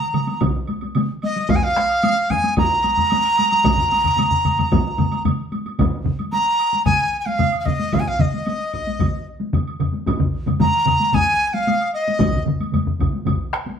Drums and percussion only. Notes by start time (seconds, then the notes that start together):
0.14 taiko mid, taiko high, high woodblock
0.27 taiko high, high woodblock
0.41 taiko, taiko mid, taiko high, high woodblock
0.67 taiko high, high woodblock
0.81 taiko high, high woodblock
0.95 taiko mid, taiko high, high woodblock
1.22 taiko high, high woodblock
1.36 taiko high, high woodblock
1.49 taiko, taiko low-mid, taiko high, high woodblock
1.76 taiko rim, taiko high, high woodblock
1.89 high woodblock
2.03 taiko high, high woodblock
2.30 taiko low-mid, taiko high, high woodblock
2.43 taiko high, high woodblock
2.57 taiko, taiko low-mid, taiko high, high woodblock
2.84 taiko high, high woodblock
2.97 taiko low-mid, taiko high, high woodblock
3.10 taiko high, high woodblock
3.37 taiko high, high woodblock
3.51 taiko high, high woodblock
3.64 taiko, taiko low-mid, taiko mid, taiko high, high woodblock
3.77 taiko low-mid, taiko mid
3.92 taiko high, high woodblock
4.04 taiko low-mid, taiko mid, high woodblock
4.17 taiko low-mid, taiko mid, taiko high, high woodblock
4.31 taiko low-mid, taiko mid
4.45 taiko low-mid, taiko mid, taiko high, high woodblock
4.58 taiko low-mid, taiko mid, taiko high, high woodblock
4.72 taiko, taiko low-mid, taiko mid, taiko high, high woodblock
4.98 taiko low-mid, taiko mid, taiko high, high woodblock
5.12 taiko high, high woodblock
5.25 taiko low-mid, taiko mid, taiko high, high woodblock
5.52 taiko high, high woodblock
5.66 taiko high, high woodblock
5.79 taiko, taiko low-mid, taiko mid, taiko high, high woodblock
6.05 taiko low-mid, taiko mid
6.19 taiko high, high woodblock
6.33 taiko high, high woodblock
6.59 high woodblock
6.73 taiko high
6.86 taiko, taiko low-mid, taiko mid, taiko high, high woodblock
7.26 taiko high
7.39 taiko low-mid, taiko mid, taiko high, high woodblock
7.52 high woodblock
7.66 taiko low-mid, taiko mid, high woodblock
7.79 taiko high
7.92 taiko, taiko low-mid, taiko mid, taiko high, high woodblock
8.19 taiko low-mid, taiko mid
8.34 taiko high
8.46 taiko high, high woodblock
8.73 taiko, high woodblock
8.87 taiko high
8.99 taiko, taiko low-mid, taiko mid, taiko high, high woodblock
9.40 taiko high
9.53 taiko low-mid, taiko mid, taiko high, high woodblock
9.67 high woodblock
9.80 taiko low-mid, taiko mid, high woodblock
9.93 taiko high
10.06 taiko, taiko high, high woodblock
10.20 taiko low-mid, taiko mid
10.46 taiko low-mid, taiko mid, taiko high, high woodblock
10.60 taiko low-mid, taiko mid, taiko high, high woodblock
10.86 taiko low-mid, taiko mid, high woodblock
11.00 taiko high
11.12 taiko, taiko low-mid, taiko mid, taiko high, high woodblock
11.54 taiko high
11.67 taiko high, high woodblock
11.81 high woodblock
11.94 high woodblock
12.08 taiko high
12.19 taiko, taiko low-mid, taiko mid, taiko high, high woodblock
12.33 taiko low-mid, taiko mid
12.46 taiko low-mid, taiko mid
12.60 taiko high, high woodblock
12.72 taiko low-mid, taiko mid, taiko high, high woodblock
12.86 taiko low-mid, taiko mid
12.99 taiko, taiko low-mid, taiko mid, high woodblock
13.13 taiko high
13.26 taiko, taiko low-mid, taiko mid, taiko high, high woodblock
13.53 taiko rim
13.67 taiko high